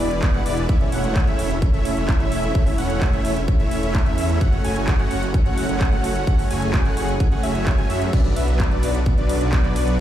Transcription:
Already playing: E3 E4 G#4 B4
0.00 E1 G#3 B3 E4 B4 D5
0.11 closed hi-hat
0.22 kick, clap, closed hi-hat
0.34 E1 G#3 B3 E4 B4 F#5, closed hi-hat
0.46 E1 G#3 B3 E4 B4 D5, open hi-hat
0.58 closed hi-hat
0.69 E1 A3 C#4 E4 C#5 E5, kick, closed hi-hat
0.81 closed hi-hat
0.92 E1 A3 C#4 E4 C#5 F#5, open hi-hat
1.04 closed hi-hat
1.15 kick, clap, closed hi-hat
1.27 E1 A3 C#4 E4 C#5 E5, closed hi-hat
1.39 open hi-hat
1.62 kick, closed hi-hat
1.74 E1 A3 C#4 E4 C#5 E5, closed hi-hat
1.85 open hi-hat
1.97 E1 A3 C#4 E4 C#5 E5, closed hi-hat
2.08 kick, clap, closed hi-hat
2.20 E1 A3 C#4 E4 C#5 E5, closed hi-hat
2.32 open hi-hat
2.43 closed hi-hat
2.55 E1 A3 C#4 E4 C#5 E5, kick, closed hi-hat
2.67 open hi-hat
2.78 E1 A3 C#4 E4 C#5 F#5, open hi-hat
2.90 closed hi-hat
3.01 kick, clap, closed hi-hat
3.13 E1 A3 C#4 E4 C#5 E5, closed hi-hat
3.25 open hi-hat
3.36 closed hi-hat
3.48 kick, closed hi-hat
3.60 E1 A3 C#4 E4 C#5 E5, closed hi-hat
3.71 open hi-hat
3.83 E1 A3 C#4 E4 C#5 E5, closed hi-hat
3.94 kick, clap, closed hi-hat
4.06 E2 A3 C#4 E4 C#5 E5, closed hi-hat
4.18 open hi-hat
4.30 closed hi-hat
4.41 F#1 A3 C#4 F#4 C#5 F#5, kick, closed hi-hat
4.53 closed hi-hat
4.64 F#1 A3 C#4 F#4 C#5 G#5, open hi-hat
4.76 closed hi-hat
4.87 kick, clap, closed hi-hat
4.99 F#1 A3 C#4 F#4 C#5 F#5, closed hi-hat
5.11 open hi-hat
5.23 closed hi-hat
5.34 kick, closed hi-hat
5.46 F#1 A3 C#4 F#4 C#5 F#5, closed hi-hat
5.58 open hi-hat
5.69 F#1 A3 C#4 F#4 C#5 F#5, closed hi-hat
5.81 kick, clap, closed hi-hat
5.92 F#1 A3 C#4 F#4 C#5 F#5, closed hi-hat
6.04 open hi-hat
6.16 closed hi-hat
6.27 F#1 A3 C#4 F#4 G#4 C#5 F#5, kick, closed hi-hat
6.39 open hi-hat
6.50 F#1 A3 C#4 F#4 C#5 G#5, open hi-hat
6.62 closed hi-hat
6.74 kick, clap, closed hi-hat
6.85 F#1 A3 C#4 F#4 C#5 F#5, closed hi-hat
6.97 open hi-hat
7.09 closed hi-hat
7.20 kick, closed hi-hat
7.32 F#1 A3 C#4 F#4 C#5 F#5, closed hi-hat
7.43 F#1 A3 C#4 F#4 C#5 E5, open hi-hat
7.55 closed hi-hat
7.66 kick, clap, closed hi-hat
7.78 F#1 A3 C#4 F#4 C#5 G#5, closed hi-hat
7.90 F#2 A3 C#4 F#4 C#5 E5, open hi-hat
8.02 closed hi-hat
8.13 B1 F#3 B3 D4 F#4 B4 D5, kick, closed hi-hat, crash
8.25 closed hi-hat
8.36 B1 F#3 B3 D4 B4 E5, open hi-hat, ride
8.48 closed hi-hat
8.60 kick, clap, closed hi-hat
8.71 B1 F#3 B3 D4 B4 D5, closed hi-hat
8.83 open hi-hat, ride
8.95 closed hi-hat
9.06 kick, closed hi-hat
9.18 B1 F#3 B3 D4 B4 D5, closed hi-hat
9.29 open hi-hat, ride
9.41 B1 F#3 B3 D4 B4 D5, closed hi-hat
9.52 kick, clap, closed hi-hat
9.64 B1 F#3 B3 D4 B4 D5, closed hi-hat
9.76 open hi-hat, ride
9.88 closed hi-hat

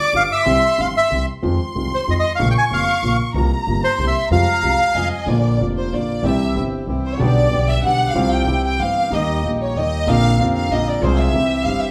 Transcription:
Already playing: D6
0.00 D5
0.13 G1 G2 D3 G3 B3 F4 F5
0.32 E5
0.46 C2 C3 E3 G3 C4 G4 C6
0.78 G1 G2 E3 G3 C4 G4 F5
0.97 E5
1.11 C2 C3 E3 G3 C4 G4
1.42 F2 D#3 F3 G#3 C4 F4 C6
1.75 C2 C3 D#3 G#3 C4 F4
1.94 C5
2.07 F2 D#3 F3 G#3 C4 F4 D#5
2.20 D#5
2.35 A#1 A#2 C#3 F3 F5
2.40 A#1 A#3 F4 C#6
2.51 G5
2.58 G#5
2.71 F1 F2 C#3 F3 A#3 F4 F5
3.03 A#1 A#2 C#3 F3 A#3 F4
3.34 C2 C3 G3 A#3 F4 A#5
3.67 G1 G2 C3 G3 A#3 F4
3.84 C5
3.98 C2 C3 G3 A#3 E4 C6
4.07 E5
4.30 F2 C3 F3 G3 G#3 F4 F5 A#5
4.63 C2 C3 G3 G#3 F4
4.79 F5
4.95 F2 C3 F3 G3 G#3 F4 D#5 G#5
5.26 A#1 A#2 D3 F3 A#3 D4 F4 D5
5.30 F4
5.58 F1 F2 D3 F3 A#3 D4 F4
5.77 C5
5.90 A#1 A#2 D3 F3 A#3 D4 F4 D5
5.95 F4
6.22 C2 C3 E3 G3 C4 E4 G4
6.26 E5
6.54 G1 G2 E3 G3 C4 E4 G4
6.86 C2 C3 E3 G3 C4 E4 G4
6.90 G4
7.05 C5
7.12 C#5
7.18 B1 B2 D3 G3 B3 D4 G4 D5
7.22 G4
7.49 B1 B2 D3 G3 B3 D4 G4
7.68 E5
7.81 B1 B2 D3 G3 B3 D4 G4 F#5
7.86 G4
8.08 F5
8.13 C2 C3 F3 G3 C4 F4 G4
8.18 G4
8.32 G5
8.45 C2 C3 E3 G3 C4 E4 G4
8.49 G4
8.65 G5
8.78 G1 G2 E3 G3 C4 G4 F5
8.82 G4
9.10 D#2 D#3 G3 A#3 D#4 G4 D#5
9.43 A#1 A#2 D#3 G3 A#3 D#4 G4
9.47 G4
9.62 C#5
9.75 D#2 D#3 G3 A#3 D#4 G4 D#5
10.06 A#1 A#2 D3 A#3 C4 D4 F4 A#4 F5
10.38 F1 F2 D3 A#3 C4 D4 A#4
10.43 F4
10.55 F5
10.69 A#1 A#2 D3 A#3 C4 D4 F4 A#4 D#5
10.88 D5
11.01 C2 C3 F3 G#3 C4 F4 G#4 C5
11.20 E5
11.32 C2 C3 E3 G3 C4 E4 G4
11.36 G4
11.64 G1 G2 E3 G3 C4 E4 G4 F5
11.81 E5

